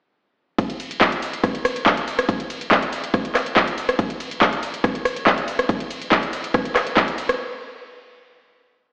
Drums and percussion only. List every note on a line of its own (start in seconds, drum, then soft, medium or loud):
0.58 kick loud
0.58 closed hi-hat medium
0.58 ride medium
0.70 closed hi-hat medium
0.70 ride medium
0.80 open hi-hat loud
0.80 ride medium
0.91 closed hi-hat medium
0.91 ride medium
1.01 kick loud
1.01 clap loud
1.01 closed hi-hat medium
1.01 ride medium
1.12 closed hi-hat medium
1.12 ride medium
1.22 open hi-hat loud
1.22 ride medium
1.33 closed hi-hat medium
1.33 ride medium
1.44 kick loud
1.44 cross-stick medium
1.44 closed hi-hat medium
1.44 ride medium
1.55 closed hi-hat medium
1.55 ride medium
1.65 cross-stick medium
1.65 open hi-hat loud
1.65 ride medium
1.76 closed hi-hat medium
1.76 ride medium
1.86 kick loud
1.86 clap loud
1.86 closed hi-hat medium
1.86 ride medium
1.97 closed hi-hat medium
1.97 ride medium
2.08 open hi-hat loud
2.08 ride medium
2.19 cross-stick medium
2.19 closed hi-hat medium
2.19 ride medium
2.29 kick loud
2.29 closed hi-hat medium
2.29 ride medium
2.40 closed hi-hat medium
2.40 ride medium
2.50 open hi-hat loud
2.50 ride medium
2.61 closed hi-hat medium
2.61 ride medium
2.71 kick loud
2.71 clap loud
2.71 closed hi-hat medium
2.71 ride medium
2.82 closed hi-hat medium
2.82 ride medium
2.93 open hi-hat loud
2.93 ride medium
3.04 closed hi-hat medium
3.04 ride medium
3.14 kick loud
3.14 cross-stick medium
3.14 closed hi-hat medium
3.14 ride medium
3.25 closed hi-hat medium
3.25 ride medium
3.35 cross-stick medium
3.35 clap medium
3.35 open hi-hat loud
3.35 ride medium
3.46 closed hi-hat medium
3.46 ride medium
3.56 kick loud
3.56 clap loud
3.56 closed hi-hat medium
3.56 ride medium
3.68 closed hi-hat medium
3.68 ride medium
3.78 open hi-hat loud
3.78 ride medium
3.89 cross-stick medium
3.89 closed hi-hat medium
3.89 ride medium
3.99 kick loud
3.99 closed hi-hat medium
3.99 ride medium
4.10 closed hi-hat medium
4.10 ride medium
4.20 open hi-hat loud
4.20 ride medium
4.31 closed hi-hat medium
4.31 ride medium
4.41 kick loud
4.41 clap loud
4.41 closed hi-hat medium
4.41 ride medium
4.53 closed hi-hat medium
4.53 ride medium
4.63 open hi-hat loud
4.63 ride medium
4.74 closed hi-hat medium
4.74 ride medium
4.84 kick loud
4.84 cross-stick medium
4.84 closed hi-hat medium
4.84 ride medium
4.95 closed hi-hat medium
4.95 ride medium
5.05 cross-stick medium
5.05 open hi-hat loud
5.05 ride medium
5.16 closed hi-hat medium
5.16 ride medium
5.27 kick loud
5.27 clap loud
5.27 closed hi-hat medium
5.27 ride medium
5.38 closed hi-hat medium
5.38 ride medium
5.48 open hi-hat loud
5.48 ride medium
5.59 cross-stick medium
5.59 closed hi-hat medium
5.59 ride medium
5.69 kick loud
5.69 closed hi-hat medium
5.69 ride medium
5.80 closed hi-hat medium
5.80 ride medium
5.91 open hi-hat loud
5.91 ride medium
6.02 closed hi-hat medium
6.02 ride medium
6.12 kick loud
6.12 clap loud
6.12 closed hi-hat medium
6.12 ride medium
6.23 closed hi-hat medium
6.23 ride medium
6.33 open hi-hat loud
6.33 ride medium
6.44 closed hi-hat medium
6.44 ride medium
6.54 kick loud
6.54 cross-stick medium
6.54 closed hi-hat medium
6.54 ride medium
6.65 closed hi-hat medium
6.65 ride medium
6.76 cross-stick medium
6.76 clap medium
6.76 open hi-hat loud
6.76 ride medium
6.87 closed hi-hat medium
6.87 ride medium
6.97 kick loud
6.97 clap loud
6.97 closed hi-hat medium
6.97 ride medium
7.08 closed hi-hat medium
7.08 ride medium
7.18 open hi-hat loud
7.18 ride medium
7.29 cross-stick medium
7.29 closed hi-hat medium
7.29 ride medium